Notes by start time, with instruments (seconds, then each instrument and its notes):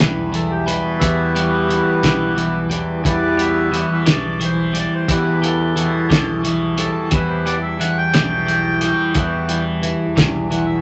Already playing: tanpura E2 B2 E3, clean electric guitar E3 G3
0.00 fingered electric bass B1, harmonium B4, snare
0.13 tanpura E2
0.32 clean electric guitar E3, harmonium A4, closed hi-hat
0.51 harmonium G4
0.66 clean electric guitar G3, harmonium B4, closed hi-hat
0.77 tanpura B2
0.98 harmonium E3 G3 B3 E5, clean electric guitar E3, kick, closed hi-hat
1.02 fingered electric bass E2
1.35 tanpura E3, clean electric guitar G3, closed hi-hat
1.69 clean electric guitar E3, closed hi-hat
2.01 fingered electric bass B1, tanpura E3, clean electric guitar G3, kick, snare, closed hi-hat
2.36 clean electric guitar E3, closed hi-hat
2.62 tanpura E2
2.70 harmonium E3 G3 B3, clean electric guitar G3, closed hi-hat
3.03 fingered electric bass E2, clean electric guitar E3, harmonium E3 G3 B3, kick, closed hi-hat
3.08 harmonium D5
3.28 tanpura B2
3.37 clean electric guitar G3, harmonium E5, closed hi-hat
3.72 clean electric guitar E3, harmonium F#5, closed hi-hat
3.88 tanpura E3
3.92 harmonium E5
4.06 fingered electric bass B1, clean electric guitar G3, snare, closed hi-hat
4.10 harmonium D5
4.40 clean electric guitar E3, closed hi-hat
4.44 harmonium C5
4.51 tanpura E3
4.73 clean electric guitar G3, closed hi-hat
4.79 harmonium D5
4.95 harmonium C5
5.08 fingered electric bass E2, clean electric guitar E3, harmonium E3 G3 B3 B4, kick, closed hi-hat
5.13 tanpura E2
5.42 clean electric guitar G3, harmonium A4, closed hi-hat
5.73 tanpura B2, clean electric guitar E3, closed hi-hat
6.10 fingered electric bass B1, clean electric guitar G3, kick, snare, closed hi-hat
6.36 tanpura E3
6.44 clean electric guitar E3, closed hi-hat
6.77 clean electric guitar G3, harmonium A4, closed hi-hat
6.95 tanpura E3
7.11 fingered electric bass E2, clean electric guitar E3, harmonium E3 G3 B3 B4, kick, closed hi-hat
7.28 harmonium C5
7.46 clean electric guitar G3, harmonium D5, closed hi-hat
7.58 tanpura E2
7.63 harmonium E5
7.80 clean electric guitar E3, harmonium F#5, closed hi-hat
7.98 harmonium G5
8.14 fingered electric bass B1, clean electric guitar G3, snare, closed hi-hat
8.20 tanpura B2
8.46 clean electric guitar E3, closed hi-hat
8.81 tanpura E3, clean electric guitar G3, closed hi-hat
9.14 fingered electric bass E2, clean electric guitar E3, harmonium E3 G3 B3, kick, closed hi-hat
9.47 tanpura E3, clean electric guitar G3, closed hi-hat
9.83 clean electric guitar E3, closed hi-hat
10.06 tanpura E2
10.16 fingered electric bass B1, clean electric guitar G3, kick, snare, closed hi-hat
10.50 clean electric guitar E3, harmonium F#5, closed hi-hat
10.66 tanpura B2, harmonium E5